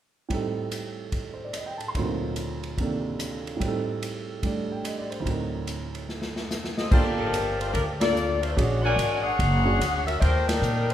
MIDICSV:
0, 0, Header, 1, 6, 480
1, 0, Start_track
1, 0, Key_signature, -2, "minor"
1, 0, Tempo, 413223
1, 347, Time_signature, 4, 2, 24, 8
1, 12707, End_track
2, 0, Start_track
2, 0, Title_t, "Trumpet section"
2, 0, Program_c, 0, 61
2, 8032, Note_on_c, 0, 67, 76
2, 8034, Note_on_c, 0, 79, 64
2, 8037, Note_on_c, 0, 81, 82
2, 8039, Note_on_c, 0, 77, 68
2, 9367, Note_off_c, 0, 67, 0
2, 9368, Note_off_c, 0, 79, 0
2, 9369, Note_off_c, 0, 81, 0
2, 9370, Note_off_c, 0, 77, 0
2, 10257, Note_on_c, 0, 78, 88
2, 10261, Note_on_c, 0, 62, 80
2, 10261, Note_on_c, 0, 70, 88
2, 10261, Note_on_c, 0, 80, 98
2, 10871, Note_off_c, 0, 78, 0
2, 10873, Note_off_c, 0, 80, 0
2, 10874, Note_off_c, 0, 62, 0
2, 10874, Note_off_c, 0, 70, 0
2, 11861, Note_on_c, 0, 70, 73
2, 11861, Note_on_c, 0, 79, 74
2, 11865, Note_on_c, 0, 74, 69
2, 12707, Note_off_c, 0, 70, 0
2, 12707, Note_off_c, 0, 74, 0
2, 12707, Note_off_c, 0, 79, 0
2, 12707, End_track
3, 0, Start_track
3, 0, Title_t, "Saxophone section"
3, 0, Program_c, 1, 65
3, 7879, Note_on_c, 1, 75, 72
3, 7880, Note_on_c, 1, 66, 60
3, 7881, Note_on_c, 1, 60, 63
3, 7887, Note_on_c, 1, 69, 63
3, 8025, Note_off_c, 1, 75, 0
3, 8026, Note_off_c, 1, 66, 0
3, 8027, Note_off_c, 1, 60, 0
3, 8030, Note_off_c, 1, 69, 0
3, 8030, Note_on_c, 1, 57, 67
3, 8032, Note_on_c, 1, 62, 72
3, 8032, Note_on_c, 1, 65, 72
3, 8034, Note_on_c, 1, 72, 78
3, 8169, Note_off_c, 1, 57, 0
3, 8170, Note_off_c, 1, 62, 0
3, 8171, Note_off_c, 1, 65, 0
3, 8172, Note_off_c, 1, 72, 0
3, 8344, Note_on_c, 1, 69, 76
3, 8346, Note_on_c, 1, 70, 87
3, 8348, Note_on_c, 1, 53, 83
3, 8351, Note_on_c, 1, 62, 76
3, 8787, Note_off_c, 1, 69, 0
3, 8788, Note_off_c, 1, 70, 0
3, 8789, Note_off_c, 1, 53, 0
3, 8790, Note_off_c, 1, 62, 0
3, 8829, Note_on_c, 1, 72, 76
3, 8831, Note_on_c, 1, 62, 64
3, 8834, Note_on_c, 1, 57, 70
3, 8837, Note_on_c, 1, 65, 68
3, 8964, Note_off_c, 1, 57, 0
3, 8970, Note_off_c, 1, 62, 0
3, 8978, Note_on_c, 1, 57, 73
3, 8980, Note_on_c, 1, 70, 87
3, 8984, Note_on_c, 1, 62, 71
3, 8986, Note_on_c, 1, 53, 70
3, 8992, Note_off_c, 1, 72, 0
3, 8996, Note_off_c, 1, 65, 0
3, 9120, Note_off_c, 1, 57, 0
3, 9121, Note_off_c, 1, 70, 0
3, 9124, Note_off_c, 1, 62, 0
3, 9126, Note_off_c, 1, 53, 0
3, 9300, Note_on_c, 1, 74, 97
3, 9306, Note_on_c, 1, 65, 78
3, 9307, Note_on_c, 1, 58, 76
3, 9309, Note_on_c, 1, 69, 78
3, 9744, Note_off_c, 1, 74, 0
3, 9748, Note_off_c, 1, 58, 0
3, 9748, Note_off_c, 1, 65, 0
3, 9749, Note_off_c, 1, 69, 0
3, 9773, Note_on_c, 1, 65, 67
3, 9776, Note_on_c, 1, 57, 76
3, 9779, Note_on_c, 1, 62, 70
3, 9782, Note_on_c, 1, 72, 76
3, 9901, Note_off_c, 1, 65, 0
3, 9903, Note_off_c, 1, 57, 0
3, 9904, Note_off_c, 1, 62, 0
3, 9906, Note_off_c, 1, 72, 0
3, 9907, Note_on_c, 1, 71, 59
3, 9946, Note_on_c, 1, 66, 80
3, 9947, Note_off_c, 1, 71, 0
3, 9950, Note_on_c, 1, 62, 76
3, 9954, Note_on_c, 1, 56, 77
3, 9958, Note_on_c, 1, 73, 91
3, 10250, Note_off_c, 1, 56, 0
3, 10250, Note_off_c, 1, 66, 0
3, 10254, Note_off_c, 1, 73, 0
3, 10258, Note_off_c, 1, 62, 0
3, 10264, Note_on_c, 1, 56, 88
3, 10264, Note_on_c, 1, 66, 84
3, 10268, Note_on_c, 1, 73, 91
3, 10272, Note_on_c, 1, 74, 100
3, 10700, Note_off_c, 1, 73, 0
3, 10713, Note_on_c, 1, 73, 84
3, 10718, Note_on_c, 1, 68, 86
3, 10720, Note_on_c, 1, 62, 82
3, 10725, Note_on_c, 1, 78, 89
3, 10740, Note_off_c, 1, 56, 0
3, 10740, Note_off_c, 1, 66, 0
3, 10744, Note_off_c, 1, 74, 0
3, 11684, Note_off_c, 1, 73, 0
3, 11687, Note_off_c, 1, 68, 0
3, 11688, Note_off_c, 1, 62, 0
3, 11689, Note_on_c, 1, 66, 72
3, 11690, Note_off_c, 1, 78, 0
3, 11691, Note_on_c, 1, 76, 94
3, 11693, Note_on_c, 1, 61, 78
3, 11699, Note_on_c, 1, 70, 80
3, 11849, Note_off_c, 1, 66, 0
3, 11850, Note_off_c, 1, 76, 0
3, 11851, Note_off_c, 1, 61, 0
3, 11854, Note_off_c, 1, 70, 0
3, 11865, Note_on_c, 1, 62, 81
3, 11865, Note_on_c, 1, 72, 83
3, 11869, Note_on_c, 1, 57, 82
3, 11870, Note_on_c, 1, 65, 75
3, 12165, Note_off_c, 1, 62, 0
3, 12175, Note_off_c, 1, 72, 0
3, 12175, Note_on_c, 1, 55, 81
3, 12176, Note_on_c, 1, 70, 95
3, 12178, Note_off_c, 1, 57, 0
3, 12178, Note_off_c, 1, 65, 0
3, 12179, Note_on_c, 1, 62, 82
3, 12182, Note_on_c, 1, 63, 78
3, 12655, Note_off_c, 1, 55, 0
3, 12655, Note_off_c, 1, 70, 0
3, 12657, Note_off_c, 1, 62, 0
3, 12658, Note_off_c, 1, 63, 0
3, 12707, End_track
4, 0, Start_track
4, 0, Title_t, "Grand piano"
4, 0, Program_c, 2, 0
4, 332, Note_on_c, 2, 45, 39
4, 349, Note_on_c, 2, 55, 38
4, 369, Note_on_c, 2, 60, 37
4, 377, Note_on_c, 2, 63, 36
4, 398, Note_on_c, 2, 69, 47
4, 1552, Note_on_c, 2, 72, 30
4, 1679, Note_on_c, 2, 74, 37
4, 1700, Note_off_c, 2, 72, 0
4, 1813, Note_on_c, 2, 75, 40
4, 1841, Note_off_c, 2, 74, 0
4, 1930, Note_on_c, 2, 79, 42
4, 2018, Note_off_c, 2, 75, 0
4, 2065, Note_on_c, 2, 81, 40
4, 2120, Note_off_c, 2, 79, 0
4, 2188, Note_on_c, 2, 84, 42
4, 2198, Note_off_c, 2, 81, 0
4, 2259, Note_off_c, 2, 45, 0
4, 2267, Note_off_c, 2, 55, 0
4, 2278, Note_off_c, 2, 60, 0
4, 2281, Note_off_c, 2, 63, 0
4, 2286, Note_on_c, 2, 38, 40
4, 2292, Note_off_c, 2, 69, 0
4, 2292, Note_on_c, 2, 46, 40
4, 2302, Note_on_c, 2, 54, 40
4, 2311, Note_on_c, 2, 60, 40
4, 2326, Note_on_c, 2, 63, 38
4, 2333, Note_on_c, 2, 70, 48
4, 2336, Note_off_c, 2, 84, 0
4, 3246, Note_on_c, 2, 48, 35
4, 3248, Note_on_c, 2, 51, 33
4, 3261, Note_on_c, 2, 58, 34
4, 3262, Note_on_c, 2, 62, 32
4, 3278, Note_on_c, 2, 69, 38
4, 4142, Note_on_c, 2, 45, 43
4, 4172, Note_on_c, 2, 55, 41
4, 4193, Note_off_c, 2, 60, 0
4, 4196, Note_off_c, 2, 38, 0
4, 4196, Note_off_c, 2, 48, 0
4, 4197, Note_off_c, 2, 51, 0
4, 4199, Note_off_c, 2, 46, 0
4, 4203, Note_off_c, 2, 58, 0
4, 4204, Note_off_c, 2, 54, 0
4, 4204, Note_off_c, 2, 62, 0
4, 4210, Note_on_c, 2, 60, 40
4, 4212, Note_off_c, 2, 69, 0
4, 4216, Note_off_c, 2, 63, 0
4, 4219, Note_off_c, 2, 70, 0
4, 4246, Note_on_c, 2, 63, 38
4, 4272, Note_on_c, 2, 69, 48
4, 5137, Note_off_c, 2, 55, 0
4, 5154, Note_on_c, 2, 55, 38
4, 5162, Note_on_c, 2, 57, 33
4, 5166, Note_on_c, 2, 62, 35
4, 5181, Note_on_c, 2, 67, 39
4, 5480, Note_on_c, 2, 79, 36
4, 5642, Note_on_c, 2, 75, 41
4, 5719, Note_off_c, 2, 79, 0
4, 5785, Note_on_c, 2, 74, 43
4, 5924, Note_off_c, 2, 75, 0
4, 5930, Note_on_c, 2, 72, 40
4, 6030, Note_off_c, 2, 74, 0
4, 6040, Note_on_c, 2, 38, 39
4, 6045, Note_off_c, 2, 45, 0
4, 6063, Note_on_c, 2, 45, 33
4, 6082, Note_on_c, 2, 54, 38
4, 6091, Note_off_c, 2, 60, 0
4, 6109, Note_on_c, 2, 60, 35
4, 6110, Note_off_c, 2, 55, 0
4, 6113, Note_off_c, 2, 63, 0
4, 6114, Note_off_c, 2, 57, 0
4, 6116, Note_off_c, 2, 62, 0
4, 6123, Note_off_c, 2, 67, 0
4, 6130, Note_on_c, 2, 63, 36
4, 6149, Note_off_c, 2, 69, 0
4, 6160, Note_on_c, 2, 70, 46
4, 6182, Note_off_c, 2, 72, 0
4, 7993, Note_off_c, 2, 38, 0
4, 8004, Note_off_c, 2, 45, 0
4, 8014, Note_off_c, 2, 54, 0
4, 8027, Note_off_c, 2, 60, 0
4, 8036, Note_on_c, 2, 62, 44
4, 8038, Note_off_c, 2, 63, 0
4, 8044, Note_on_c, 2, 58, 47
4, 8048, Note_on_c, 2, 65, 43
4, 8050, Note_on_c, 2, 69, 49
4, 8053, Note_off_c, 2, 70, 0
4, 8310, Note_off_c, 2, 62, 0
4, 8315, Note_off_c, 2, 58, 0
4, 8317, Note_off_c, 2, 65, 0
4, 8318, Note_off_c, 2, 69, 0
4, 9302, Note_on_c, 2, 65, 51
4, 9303, Note_on_c, 2, 58, 56
4, 9305, Note_on_c, 2, 62, 46
4, 9311, Note_on_c, 2, 69, 58
4, 9451, Note_off_c, 2, 65, 0
4, 9452, Note_off_c, 2, 58, 0
4, 9453, Note_off_c, 2, 62, 0
4, 9456, Note_off_c, 2, 69, 0
4, 9945, Note_on_c, 2, 61, 51
4, 9951, Note_on_c, 2, 62, 48
4, 9953, Note_on_c, 2, 68, 57
4, 9958, Note_on_c, 2, 66, 50
4, 10224, Note_off_c, 2, 61, 0
4, 10228, Note_off_c, 2, 62, 0
4, 10229, Note_off_c, 2, 68, 0
4, 10231, Note_off_c, 2, 66, 0
4, 11201, Note_on_c, 2, 61, 54
4, 11211, Note_on_c, 2, 66, 47
4, 11213, Note_on_c, 2, 62, 46
4, 11214, Note_on_c, 2, 68, 59
4, 11360, Note_off_c, 2, 61, 0
4, 11365, Note_off_c, 2, 66, 0
4, 11366, Note_off_c, 2, 62, 0
4, 11367, Note_off_c, 2, 68, 0
4, 12707, End_track
5, 0, Start_track
5, 0, Title_t, "Upright bass"
5, 0, Program_c, 3, 32
5, 8033, Note_on_c, 3, 31, 76
5, 8942, Note_off_c, 3, 31, 0
5, 8985, Note_on_c, 3, 38, 75
5, 9898, Note_off_c, 3, 38, 0
5, 9959, Note_on_c, 3, 34, 84
5, 10399, Note_off_c, 3, 34, 0
5, 10412, Note_on_c, 3, 32, 71
5, 10864, Note_off_c, 3, 32, 0
5, 10910, Note_on_c, 3, 30, 79
5, 11354, Note_off_c, 3, 30, 0
5, 11375, Note_on_c, 3, 38, 66
5, 11826, Note_off_c, 3, 38, 0
5, 11866, Note_on_c, 3, 39, 78
5, 12312, Note_off_c, 3, 39, 0
5, 12330, Note_on_c, 3, 46, 78
5, 12707, Note_off_c, 3, 46, 0
5, 12707, End_track
6, 0, Start_track
6, 0, Title_t, "Drums"
6, 349, Note_on_c, 9, 36, 26
6, 353, Note_on_c, 9, 51, 45
6, 465, Note_off_c, 9, 36, 0
6, 469, Note_off_c, 9, 51, 0
6, 830, Note_on_c, 9, 44, 45
6, 830, Note_on_c, 9, 51, 50
6, 947, Note_off_c, 9, 44, 0
6, 947, Note_off_c, 9, 51, 0
6, 1303, Note_on_c, 9, 51, 46
6, 1304, Note_on_c, 9, 36, 28
6, 1419, Note_off_c, 9, 51, 0
6, 1420, Note_off_c, 9, 36, 0
6, 1781, Note_on_c, 9, 37, 51
6, 1783, Note_on_c, 9, 44, 44
6, 1783, Note_on_c, 9, 51, 49
6, 1897, Note_off_c, 9, 37, 0
6, 1899, Note_off_c, 9, 44, 0
6, 1899, Note_off_c, 9, 51, 0
6, 2096, Note_on_c, 9, 51, 35
6, 2212, Note_off_c, 9, 51, 0
6, 2263, Note_on_c, 9, 36, 27
6, 2264, Note_on_c, 9, 51, 46
6, 2379, Note_off_c, 9, 36, 0
6, 2380, Note_off_c, 9, 51, 0
6, 2741, Note_on_c, 9, 44, 51
6, 2741, Note_on_c, 9, 51, 49
6, 2857, Note_off_c, 9, 44, 0
6, 2857, Note_off_c, 9, 51, 0
6, 3060, Note_on_c, 9, 51, 34
6, 3176, Note_off_c, 9, 51, 0
6, 3225, Note_on_c, 9, 36, 30
6, 3231, Note_on_c, 9, 51, 42
6, 3341, Note_off_c, 9, 36, 0
6, 3347, Note_off_c, 9, 51, 0
6, 3710, Note_on_c, 9, 37, 51
6, 3712, Note_on_c, 9, 44, 55
6, 3712, Note_on_c, 9, 51, 48
6, 3826, Note_off_c, 9, 37, 0
6, 3828, Note_off_c, 9, 44, 0
6, 3828, Note_off_c, 9, 51, 0
6, 4032, Note_on_c, 9, 51, 33
6, 4148, Note_off_c, 9, 51, 0
6, 4189, Note_on_c, 9, 36, 26
6, 4197, Note_on_c, 9, 51, 51
6, 4305, Note_off_c, 9, 36, 0
6, 4313, Note_off_c, 9, 51, 0
6, 4676, Note_on_c, 9, 44, 44
6, 4676, Note_on_c, 9, 51, 51
6, 4792, Note_off_c, 9, 44, 0
6, 4792, Note_off_c, 9, 51, 0
6, 5144, Note_on_c, 9, 36, 28
6, 5145, Note_on_c, 9, 51, 50
6, 5260, Note_off_c, 9, 36, 0
6, 5262, Note_off_c, 9, 51, 0
6, 5629, Note_on_c, 9, 37, 56
6, 5631, Note_on_c, 9, 44, 42
6, 5631, Note_on_c, 9, 51, 53
6, 5745, Note_off_c, 9, 37, 0
6, 5748, Note_off_c, 9, 44, 0
6, 5748, Note_off_c, 9, 51, 0
6, 5947, Note_on_c, 9, 51, 34
6, 6063, Note_off_c, 9, 51, 0
6, 6107, Note_on_c, 9, 36, 27
6, 6116, Note_on_c, 9, 51, 47
6, 6224, Note_off_c, 9, 36, 0
6, 6233, Note_off_c, 9, 51, 0
6, 6590, Note_on_c, 9, 44, 45
6, 6590, Note_on_c, 9, 51, 49
6, 6706, Note_off_c, 9, 44, 0
6, 6706, Note_off_c, 9, 51, 0
6, 6907, Note_on_c, 9, 51, 35
6, 7024, Note_off_c, 9, 51, 0
6, 7072, Note_on_c, 9, 38, 36
6, 7188, Note_off_c, 9, 38, 0
6, 7222, Note_on_c, 9, 38, 43
6, 7338, Note_off_c, 9, 38, 0
6, 7391, Note_on_c, 9, 38, 54
6, 7507, Note_off_c, 9, 38, 0
6, 7558, Note_on_c, 9, 38, 52
6, 7561, Note_on_c, 9, 44, 55
6, 7674, Note_off_c, 9, 38, 0
6, 7677, Note_off_c, 9, 44, 0
6, 7716, Note_on_c, 9, 38, 51
6, 7833, Note_off_c, 9, 38, 0
6, 7870, Note_on_c, 9, 38, 62
6, 7987, Note_off_c, 9, 38, 0
6, 8033, Note_on_c, 9, 36, 62
6, 8033, Note_on_c, 9, 49, 65
6, 8149, Note_off_c, 9, 49, 0
6, 8150, Note_off_c, 9, 36, 0
6, 8522, Note_on_c, 9, 44, 48
6, 8522, Note_on_c, 9, 51, 58
6, 8638, Note_off_c, 9, 44, 0
6, 8638, Note_off_c, 9, 51, 0
6, 8836, Note_on_c, 9, 51, 38
6, 8952, Note_off_c, 9, 51, 0
6, 8994, Note_on_c, 9, 36, 31
6, 8998, Note_on_c, 9, 51, 56
6, 9110, Note_off_c, 9, 36, 0
6, 9114, Note_off_c, 9, 51, 0
6, 9304, Note_on_c, 9, 38, 73
6, 9306, Note_on_c, 9, 51, 58
6, 9420, Note_off_c, 9, 38, 0
6, 9422, Note_off_c, 9, 51, 0
6, 9480, Note_on_c, 9, 44, 51
6, 9596, Note_off_c, 9, 44, 0
6, 9793, Note_on_c, 9, 51, 41
6, 9909, Note_off_c, 9, 51, 0
6, 9956, Note_on_c, 9, 36, 29
6, 9971, Note_on_c, 9, 51, 56
6, 10072, Note_off_c, 9, 36, 0
6, 10087, Note_off_c, 9, 51, 0
6, 10440, Note_on_c, 9, 44, 51
6, 10440, Note_on_c, 9, 51, 58
6, 10557, Note_off_c, 9, 44, 0
6, 10557, Note_off_c, 9, 51, 0
6, 10908, Note_on_c, 9, 36, 31
6, 10915, Note_on_c, 9, 51, 55
6, 11024, Note_off_c, 9, 36, 0
6, 11031, Note_off_c, 9, 51, 0
6, 11396, Note_on_c, 9, 37, 57
6, 11399, Note_on_c, 9, 44, 55
6, 11399, Note_on_c, 9, 51, 63
6, 11513, Note_off_c, 9, 37, 0
6, 11515, Note_off_c, 9, 44, 0
6, 11515, Note_off_c, 9, 51, 0
6, 11708, Note_on_c, 9, 51, 44
6, 11825, Note_off_c, 9, 51, 0
6, 11866, Note_on_c, 9, 36, 30
6, 11872, Note_on_c, 9, 51, 54
6, 11982, Note_off_c, 9, 36, 0
6, 11988, Note_off_c, 9, 51, 0
6, 12182, Note_on_c, 9, 38, 73
6, 12184, Note_on_c, 9, 51, 65
6, 12298, Note_off_c, 9, 38, 0
6, 12300, Note_off_c, 9, 51, 0
6, 12345, Note_on_c, 9, 44, 52
6, 12462, Note_off_c, 9, 44, 0
6, 12661, Note_on_c, 9, 51, 40
6, 12707, Note_off_c, 9, 51, 0
6, 12707, End_track
0, 0, End_of_file